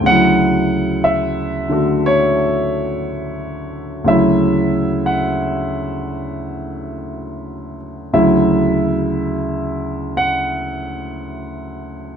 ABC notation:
X:1
M:4/4
L:1/8
Q:"Swing" 1/4=59
K:D
V:1 name="Grand piano"
f2 e2 c4 | e2 f4- f z | e4 f4 |]
V:2 name="Grand piano" clef=bass
[D,,C,F,E]3 [D,A,F]4- [D,A,F] | [D,,C,F,E]8 | [D,,C,F,E]8 |]